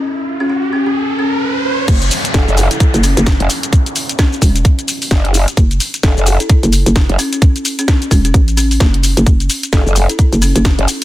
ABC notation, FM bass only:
X:1
M:4/4
L:1/16
Q:"Swing 16ths" 1/4=130
K:F#m
V:1 name="FM bass" clef=bass
z16 | F,,,2 z6 z F,,,2 F,,,2 z3 | z6 E,,,2 z8 | F,,,2 z6 z F,,,2 F,,,2 z3 |
z6 E,,,2 A,,,4 F,,,3 F,,, | F,,,2 z6 z F,,,2 F,,,2 z3 |]